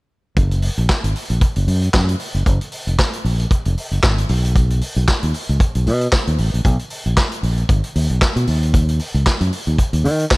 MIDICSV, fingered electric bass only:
0, 0, Header, 1, 2, 480
1, 0, Start_track
1, 0, Tempo, 523104
1, 338, Time_signature, 4, 2, 24, 8
1, 9517, End_track
2, 0, Start_track
2, 0, Title_t, "Fingered electric bass"
2, 0, Program_c, 0, 33
2, 339, Note_on_c, 0, 30, 99
2, 623, Note_off_c, 0, 30, 0
2, 712, Note_on_c, 0, 34, 82
2, 792, Note_off_c, 0, 34, 0
2, 953, Note_on_c, 0, 32, 74
2, 1033, Note_off_c, 0, 32, 0
2, 1192, Note_on_c, 0, 34, 79
2, 1273, Note_off_c, 0, 34, 0
2, 1435, Note_on_c, 0, 30, 84
2, 1514, Note_off_c, 0, 30, 0
2, 1536, Note_on_c, 0, 42, 94
2, 1719, Note_off_c, 0, 42, 0
2, 1780, Note_on_c, 0, 42, 83
2, 1962, Note_off_c, 0, 42, 0
2, 2151, Note_on_c, 0, 30, 76
2, 2232, Note_off_c, 0, 30, 0
2, 2260, Note_on_c, 0, 30, 99
2, 2362, Note_off_c, 0, 30, 0
2, 2633, Note_on_c, 0, 29, 72
2, 2713, Note_off_c, 0, 29, 0
2, 2978, Note_on_c, 0, 34, 70
2, 3161, Note_off_c, 0, 34, 0
2, 3359, Note_on_c, 0, 29, 81
2, 3437, Note_off_c, 0, 29, 0
2, 3591, Note_on_c, 0, 30, 71
2, 3672, Note_off_c, 0, 30, 0
2, 3700, Note_on_c, 0, 32, 74
2, 3882, Note_off_c, 0, 32, 0
2, 3940, Note_on_c, 0, 35, 96
2, 4407, Note_off_c, 0, 35, 0
2, 4554, Note_on_c, 0, 35, 95
2, 4634, Note_off_c, 0, 35, 0
2, 4799, Note_on_c, 0, 39, 76
2, 4877, Note_off_c, 0, 39, 0
2, 5040, Note_on_c, 0, 37, 91
2, 5118, Note_off_c, 0, 37, 0
2, 5279, Note_on_c, 0, 35, 92
2, 5386, Note_on_c, 0, 47, 87
2, 5399, Note_off_c, 0, 35, 0
2, 5566, Note_off_c, 0, 47, 0
2, 5758, Note_on_c, 0, 39, 81
2, 5836, Note_off_c, 0, 39, 0
2, 5865, Note_on_c, 0, 33, 89
2, 5965, Note_off_c, 0, 33, 0
2, 5999, Note_on_c, 0, 34, 74
2, 6078, Note_off_c, 0, 34, 0
2, 6101, Note_on_c, 0, 35, 106
2, 6203, Note_off_c, 0, 35, 0
2, 6476, Note_on_c, 0, 34, 79
2, 6556, Note_off_c, 0, 34, 0
2, 6817, Note_on_c, 0, 34, 76
2, 7001, Note_off_c, 0, 34, 0
2, 7057, Note_on_c, 0, 32, 83
2, 7160, Note_off_c, 0, 32, 0
2, 7301, Note_on_c, 0, 39, 82
2, 7402, Note_off_c, 0, 39, 0
2, 7431, Note_on_c, 0, 35, 76
2, 7513, Note_off_c, 0, 35, 0
2, 7670, Note_on_c, 0, 47, 80
2, 7752, Note_off_c, 0, 47, 0
2, 7778, Note_on_c, 0, 39, 83
2, 8245, Note_off_c, 0, 39, 0
2, 8390, Note_on_c, 0, 37, 82
2, 8472, Note_off_c, 0, 37, 0
2, 8632, Note_on_c, 0, 42, 87
2, 8713, Note_off_c, 0, 42, 0
2, 8873, Note_on_c, 0, 39, 82
2, 8954, Note_off_c, 0, 39, 0
2, 9111, Note_on_c, 0, 39, 79
2, 9215, Note_on_c, 0, 51, 90
2, 9228, Note_off_c, 0, 39, 0
2, 9399, Note_off_c, 0, 51, 0
2, 9517, End_track
0, 0, End_of_file